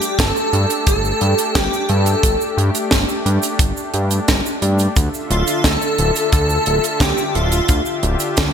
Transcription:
0.00 4.92 A3 medium
0.00 8.53 D4 medium
0.00 0.21 G4 loud
0.00 4.92 G4 medium
0.00 closed hi-hat medium
0.00 cabasa medium
0.19 0.32 G1 loud
0.19 0.87 A4 loud
0.19 kick loud
0.19 snare loud
0.19 closed hi-hat loud
0.19 cabasa medium
0.36 cabasa soft
0.53 0.66 G2 medium
0.53 closed hi-hat medium
0.70 closed hi-hat medium
0.70 cabasa medium
0.87 1.13 G1 loud
0.87 1.57 A4 loud
0.87 kick loud
0.87 closed hi-hat loud
0.87 cabasa medium
1.05 cabasa soft
1.21 1.34 G2 medium
1.21 closed hi-hat medium
1.38 closed hi-hat medium
1.38 cabasa medium
1.55 1.68 G1 loud
1.55 1.91 G4 loud
1.55 kick loud
1.55 snare loud
1.55 closed hi-hat loud
1.55 cabasa medium
1.73 cabasa medium
1.89 2.15 G2 loud
1.89 2.58 A4 loud
1.89 closed hi-hat medium
2.06 closed hi-hat medium
2.06 cabasa medium
2.23 2.36 G1 loud
2.23 kick loud
2.23 closed hi-hat loud
2.23 cabasa medium
2.41 cabasa soft
2.57 2.70 G2 loud
2.57 closed hi-hat medium
2.75 closed hi-hat medium
2.75 cabasa medium
2.91 3.05 G1 medium
2.91 kick loud
2.91 snare loud
2.91 closed hi-hat loud
2.91 cabasa medium
3.09 cabasa soft
3.26 3.39 G2 medium
3.26 closed hi-hat medium
3.42 closed hi-hat medium
3.42 cabasa medium
3.59 3.73 G1 medium
3.59 kick loud
3.59 closed hi-hat loud
3.59 cabasa medium
3.77 cabasa soft
3.94 4.20 G2 medium
3.94 closed hi-hat medium
4.11 closed hi-hat medium
4.11 cabasa medium
4.28 4.41 G1 medium
4.28 kick loud
4.28 snare loud
4.28 closed hi-hat loud
4.28 cabasa medium
4.46 cabasa soft
4.62 4.88 G2 medium
4.62 closed hi-hat medium
4.79 closed hi-hat medium
4.79 cabasa medium
4.96 5.09 D2 loud
4.96 8.53 D3 medium
4.96 8.53 F4 medium
4.96 7.66 A4 medium
4.96 8.53 E5 medium
4.96 kick loud
4.96 closed hi-hat medium
4.96 cabasa medium
5.14 cabasa soft
5.30 5.43 D1 loud
5.30 5.66 F4 loud
5.30 closed hi-hat medium
5.47 closed hi-hat medium
5.47 cabasa medium
5.64 5.77 D2 medium
5.64 6.32 A4 loud
5.64 kick loud
5.64 snare loud
5.64 closed hi-hat loud
5.64 cabasa medium
5.82 cabasa medium
5.98 6.11 D1 loud
5.98 closed hi-hat medium
6.15 closed hi-hat medium
6.15 cabasa medium
6.32 6.58 D2 loud
6.32 7.02 A4 loud
6.32 kick loud
6.32 closed hi-hat medium
6.32 cabasa medium
6.50 cabasa soft
6.66 6.80 D1 medium
6.66 closed hi-hat medium
6.84 closed hi-hat medium
6.84 cabasa medium
7.00 7.13 D2 loud
7.00 7.34 G4 loud
7.00 kick loud
7.00 snare loud
7.00 closed hi-hat medium
7.00 cabasa medium
7.18 cabasa medium
7.35 7.61 D1 loud
7.35 7.99 F4 medium
7.35 closed hi-hat medium
7.52 closed hi-hat medium
7.52 cabasa medium
7.68 7.82 D2 loud
7.68 8.53 G4 medium
7.68 kick loud
7.68 closed hi-hat medium
7.68 cabasa medium
7.86 cabasa soft
8.03 8.16 D1 loud
8.03 closed hi-hat medium
8.20 closed hi-hat medium
8.20 cabasa medium
8.37 8.50 D2 medium
8.37 kick loud
8.37 snare loud
8.37 closed hi-hat medium
8.37 cabasa medium

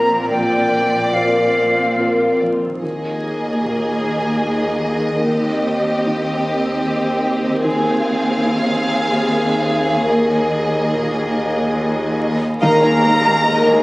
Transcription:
0.00 0.26 A#1 soft
0.00 2.58 A#1 medium
0.00 0.33 F2 soft
0.00 0.29 A#2 medium
0.00 2.58 A#2 medium
0.00 0.56 A#3 soft
0.00 0.71 C4 soft
0.00 1.12 C4 soft
0.00 0.34 F4 soft
0.00 1.11 F4 soft
0.00 2.41 F4 soft
0.00 0.30 A#4 soft
0.00 1.14 A#4 soft
0.00 0.33 C5 soft
0.00 1.55 C5 soft
0.00 0.29 A#5 medium
0.30 2.79 A#1 soft
0.30 2.86 A#2 soft
0.30 2.41 D5 medium
0.30 1.15 G5 medium
0.72 1.40 F2 soft
0.72 2.86 C4 soft
1.14 2.60 C4 soft
1.14 1.53 F4 soft
1.14 2.60 F4 soft
1.14 1.98 A#4 soft
1.14 1.53 C5 soft
1.14 2.41 F5 medium
1.57 2.25 A#3 soft
1.57 2.86 C5 soft
1.99 2.38 F4 soft
1.99 5.30 A#4 soft
1.99 2.38 C5 soft
2.42 2.83 F2 soft
2.42 2.87 F4 soft
2.65 5.07 D#3 soft
2.69 5.23 A#3 soft
2.74 5.16 D#4 soft
2.78 5.27 G#4 soft
2.82 7.61 D#2 soft
2.82 5.23 D#2 soft
2.82 7.62 D#2 soft
2.82 5.23 A#3 soft
2.82 5.23 G#4 soft
2.82 7.61 D#5 soft
3.65 5.27 A#2 soft
5.08 7.46 D#3 soft
5.12 7.50 C4 soft
5.17 9.07 D#4 soft
5.22 7.66 G4 soft
5.26 7.61 D#2 soft
5.26 10.10 C4 medium
5.26 7.62 G4 medium
6.06 7.66 D#3 soft
7.47 9.90 D#3 soft
7.52 10.06 C4 soft
7.56 10.08 F4 soft
7.61 10.05 D#2 soft
7.61 10.03 G#4 soft
7.65 12.38 D#2 medium
7.65 12.38 G#4 medium
7.65 10.10 F5 medium
8.45 10.10 D#3 soft
9.91 12.57 D#3 soft
9.95 12.82 A#3 soft
10.00 13.03 D#4 soft
10.05 13.24 G#4 soft
10.09 12.58 D#2 soft
10.09 12.38 A#3 soft
10.09 12.39 D#5 soft
10.93 12.62 A#2 soft
12.61 13.83 D#2 medium
12.61 13.83 D#3 medium
12.61 13.83 D#3 loud
12.61 13.83 G#3 medium
12.61 12.82 G#3 medium
12.61 13.83 D#4 medium
12.61 12.82 D#4 medium
12.61 12.81 A#4 medium
12.61 13.83 A#4 medium
12.61 12.81 D#5 medium
12.61 13.46 F5 medium
12.61 13.83 A#5 loud
12.61 tam-tam medium
12.83 13.05 D#3 medium
12.83 13.83 A#3 soft
12.83 13.05 A#3 medium
12.83 13.17 D#4 medium
12.83 13.04 G#4 medium
12.83 13.02 A#4 medium
13.03 13.26 G#3 medium
13.03 13.38 A#3 soft
13.03 13.83 D#4 medium
13.03 13.26 D#4 medium
13.03 13.22 A#4 medium
13.03 13.24 D#5 medium
13.24 13.46 D#3 medium
13.24 13.46 A#3 medium
13.24 13.58 D#4 soft
13.24 13.45 G#4 medium
13.24 13.45 A#4 medium
13.44 13.66 G#3 medium
13.44 13.66 D#4 medium
13.44 13.79 G#4 medium
13.44 13.83 A#4 medium
13.44 13.65 A#4 medium
13.44 13.83 D#5 medium
13.44 13.65 D#5 medium
13.66 13.83 D#3 medium
13.66 13.83 A#3 medium
13.66 13.83 G#4 medium
13.66 13.83 A#4 medium

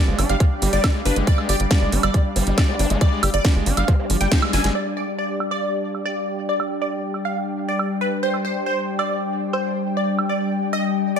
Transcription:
0.00 4.74 G3 medium
0.00 11.20 D4 medium
0.00 11.20 G4 medium
0.00 11.20 D5 medium
0.00 6.27 F5 medium
0.08 0.14 G1 medium
0.08 0.15 F3 medium
0.08 0.20 G#3 loud
0.19 0.25 G1 loud
0.19 0.26 F3 medium
0.19 0.29 D4 medium
0.19 open hi-hat loud
0.19 high woodblock soft
0.29 0.36 G1 medium
0.29 0.37 G3 medium
0.29 0.41 F5 medium
0.29 closed hi-hat medium
0.40 0.45 F3 loud
0.40 kick loud
0.40 closed hi-hat medium
0.62 0.69 G1 loud
0.62 0.95 G3 loud
0.62 0.72 G3 medium
0.62 open hi-hat loud
0.73 0.79 G1 medium
0.73 0.83 G3 medium
0.73 0.90 D5 loud
0.73 closed hi-hat medium
0.84 0.91 G3 medium
0.84 kick loud
0.84 snare loud
0.84 closed hi-hat medium
0.84 high woodblock medium
0.95 1.02 G#3 medium
1.05 1.12 G1 loud
1.05 1.16 D4 medium
1.05 1.17 B4 loud
1.05 open hi-hat loud
1.16 1.23 G1 medium
1.16 1.27 G#3 medium
1.16 closed hi-hat medium
1.27 1.38 G3 medium
1.27 1.39 D5 loud
1.27 kick loud
1.27 closed hi-hat medium
1.38 1.48 G#3 loud
1.38 high woodblock soft
1.49 1.55 G1 loud
1.49 1.56 G4 medium
1.49 1.61 D5 medium
1.49 open hi-hat loud
1.60 1.66 G1 medium
1.60 closed hi-hat medium
1.71 1.81 G3 loud
1.71 1.88 D5 medium
1.71 kick loud
1.71 snare loud
1.71 closed hi-hat medium
1.82 1.88 G1 medium
1.82 1.94 G#3 loud
1.92 1.99 G1 loud
1.92 2.03 D4 medium
1.92 open hi-hat loud
2.03 2.10 G1 medium
2.03 2.11 G3 medium
2.03 2.21 D5 loud
2.03 closed hi-hat medium
2.03 high woodblock medium
2.14 2.19 F3 loud
2.14 kick loud
2.14 closed hi-hat medium
2.36 2.42 G1 medium
2.36 2.46 G3 medium
2.36 2.45 B3 medium
2.36 open hi-hat loud
2.47 2.53 G1 medium
2.47 2.60 G3 medium
2.47 2.57 G3 medium
2.47 closed hi-hat medium
2.58 2.65 G3 medium
2.58 2.81 D5 loud
2.58 kick loud
2.58 snare loud
2.58 closed hi-hat medium
2.58 high woodblock soft
2.68 2.76 G#3 medium
2.68 2.75 B3 medium
2.79 2.86 G1 loud
2.79 2.86 B3 medium
2.79 2.90 D4 medium
2.79 open hi-hat loud
2.90 2.97 G1 medium
2.90 3.01 G#3 medium
2.90 2.97 D4 medium
2.90 closed hi-hat medium
3.01 3.11 G3 medium
3.01 3.08 D4 medium
3.01 3.18 D5 medium
3.01 kick loud
3.01 closed hi-hat medium
3.12 3.22 G#3 loud
3.23 3.29 G1 loud
3.23 3.30 G4 medium
3.23 open hi-hat loud
3.23 high woodblock medium
3.34 3.40 G1 medium
3.34 3.57 D5 loud
3.34 closed hi-hat medium
3.45 3.55 G3 loud
3.45 kick loud
3.45 snare loud
3.45 closed hi-hat medium
3.55 3.62 G1 medium
3.55 3.68 G#3 loud
3.66 3.73 G1 loud
3.66 3.77 D4 medium
3.66 open hi-hat loud
3.77 3.84 G1 medium
3.77 3.85 G3 medium
3.77 3.89 F5 medium
3.77 closed hi-hat medium
3.77 high woodblock soft
3.88 3.93 F3 loud
3.88 3.95 B3 medium
3.88 kick loud
3.88 closed hi-hat medium
3.99 4.06 B3 medium
4.10 4.16 G1 loud
4.10 4.17 F3 medium
4.10 open hi-hat loud
4.21 4.27 G1 medium
4.21 4.28 G3 loud
4.21 4.38 G5 loud
4.21 closed hi-hat medium
4.32 4.36 G3 medium
4.32 kick loud
4.32 snare loud
4.32 closed hi-hat medium
4.42 4.53 G#3 medium
4.42 high woodblock medium
4.53 4.60 G1 loud
4.53 4.61 D4 medium
4.53 4.65 G#5 loud
4.53 snare medium
4.53 open hi-hat loud
4.64 4.71 G1 medium
4.64 4.75 G#3 medium
4.64 snare medium
4.64 closed hi-hat medium
4.75 11.20 G3 medium
4.75 4.87 D5 medium
4.75 high woodblock soft
4.97 5.08 D5 medium
5.19 5.36 D5 medium
5.40 high woodblock medium
5.51 5.68 D5 loud
5.73 11.20 G5 medium
5.95 high woodblock soft
6.06 6.29 D5 loud
6.49 6.66 D5 medium
6.60 high woodblock medium
6.82 7.05 D5 medium
7.14 high woodblock soft
7.25 7.37 F5 medium
7.69 7.86 D5 medium
7.79 high woodblock medium
8.01 8.13 B4 loud
8.23 8.34 C5 loud
8.34 high woodblock soft
8.45 8.56 C5 medium
8.66 8.84 C5 loud
8.99 9.16 D5 loud
8.99 high woodblock medium
9.53 9.76 C5 loud
9.53 high woodblock soft
9.97 10.14 D5 medium
10.19 high woodblock medium
10.29 10.52 D5 medium
10.73 10.84 D#5 loud
10.73 high woodblock soft
11.16 11.20 D5 loud

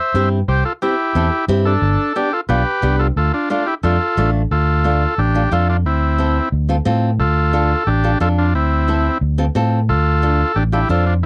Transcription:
0.00 0.29 C5 medium
0.00 0.29 E5 medium
0.14 0.41 G2 loud
0.14 0.38 C4 medium
0.14 0.38 E4 medium
0.14 0.39 G4 medium
0.48 0.62 C2 loud
0.48 0.64 G4 loud
0.48 0.64 C5 loud
0.65 0.73 F4 medium
0.65 0.73 A4 medium
0.82 0.94 C4 medium
0.82 0.94 E4 medium
0.82 1.45 E4 medium
0.82 1.45 G4 medium
0.82 0.94 G4 medium
1.15 1.29 E2 medium
1.15 1.27 C4 medium
1.15 1.27 E4 medium
1.15 1.27 A4 medium
1.48 1.75 G2 loud
1.48 1.72 C4 medium
1.48 1.72 E4 medium
1.48 1.73 G4 loud
1.65 2.13 D4 medium
1.65 2.17 A4 loud
1.82 1.95 G1 loud
2.16 2.27 B3 medium
2.16 2.28 D4 medium
2.16 2.32 D4 medium
2.16 2.33 G4 medium
2.16 2.28 G4 medium
2.33 2.41 F4 medium
2.33 2.40 A4 medium
2.49 2.63 B1 medium
2.49 2.61 B3 medium
2.49 2.61 D4 medium
2.49 2.61 F4 medium
2.49 2.96 G4 medium
2.49 3.01 B4 loud
2.82 3.10 C2 loud
2.82 3.06 B3 medium
2.82 3.06 D4 medium
2.82 3.06 G4 medium
2.99 3.08 F4 medium
2.99 3.07 A4 medium
3.16 3.30 D2 loud
3.16 3.32 F4 medium
3.16 3.32 A4 loud
3.33 3.49 D4 medium
3.33 3.49 F4 medium
3.50 3.62 A3 medium
3.50 3.62 D4 medium
3.50 3.66 D4 medium
3.50 3.67 F4 medium
3.50 3.62 F4 medium
3.67 3.75 E4 medium
3.67 3.74 G4 medium
3.83 3.97 F2 medium
3.83 3.95 A3 medium
3.83 3.95 D4 medium
3.83 3.95 F4 medium
3.83 4.31 F4 medium
3.83 4.30 A4 loud
4.17 4.44 A1 loud
4.17 4.41 A3 medium
4.17 4.41 D4 medium
4.17 4.41 F4 medium
4.51 5.05 D2 loud
4.51 5.15 F4 medium
4.51 5.20 A4 loud
4.84 5.02 A3 medium
4.84 5.02 D4 medium
4.84 5.02 F4 medium
5.18 5.45 A1 loud
5.18 5.49 D4 medium
5.18 5.53 G4 medium
5.35 5.41 A3 medium
5.35 5.41 D4 medium
5.35 5.41 F4 medium
5.51 5.85 F2 medium
5.51 5.75 A3 medium
5.51 5.75 D4 medium
5.51 5.75 F4 medium
5.51 5.68 F4 medium
5.51 5.68 A4 loud
5.70 5.77 D4 medium
5.70 5.77 F4 medium
5.85 6.39 D2 loud
5.85 6.49 C4 medium
5.85 6.49 E4 medium
6.18 6.36 C4 medium
6.18 6.37 E4 medium
6.18 6.37 A4 medium
6.52 6.79 D2 medium
6.69 6.75 C4 medium
6.69 6.75 F4 medium
6.69 6.75 A4 medium
6.85 7.21 A2 medium
6.85 7.09 C4 medium
6.85 7.10 F4 medium
6.85 7.10 A4 medium
7.19 7.73 D2 medium
7.19 7.83 F4 medium
7.19 7.89 A4 loud
7.53 7.71 D4 medium
7.53 7.71 F4 medium
7.53 7.71 A4 medium
7.87 8.14 A1 loud
7.87 8.19 D4 medium
7.87 8.18 G4 loud
8.04 8.10 D4 medium
8.04 8.10 F4 medium
8.04 8.10 A4 medium
8.20 8.54 F2 medium
8.20 8.44 D4 medium
8.20 8.44 F4 medium
8.20 8.29 F4 medium
8.20 8.44 A4 medium
8.20 8.28 A4 loud
8.38 8.54 D4 medium
8.38 8.54 F4 medium
8.54 9.08 D2 loud
8.54 9.18 C4 medium
8.54 9.18 E4 medium
8.88 9.06 C4 medium
8.88 9.06 E4 medium
8.88 9.06 A4 medium
9.21 9.48 D2 medium
9.38 9.44 C4 medium
9.38 9.44 F4 medium
9.38 9.44 A4 medium
9.55 9.90 A2 medium
9.55 9.79 C4 medium
9.55 9.79 F4 medium
9.55 9.79 A4 medium
9.89 10.43 D2 medium
9.89 10.52 F4 medium
9.89 10.58 A4 loud
10.22 10.40 D4 medium
10.22 10.40 F4 medium
10.22 10.40 A4 medium
10.56 10.83 A1 loud
10.56 10.64 D4 medium
10.56 10.63 G4 loud
10.72 10.78 D4 medium
10.72 10.89 E4 medium
10.72 10.79 F4 medium
10.72 10.88 G4 medium
10.72 10.79 A4 medium
10.89 11.23 F2 medium
10.89 11.13 D4 medium
10.89 11.13 F4 medium
10.89 11.05 F4 medium
10.89 11.05 A4 loud
10.89 11.13 C5 medium
11.06 11.14 D4 medium
11.06 11.14 F4 medium

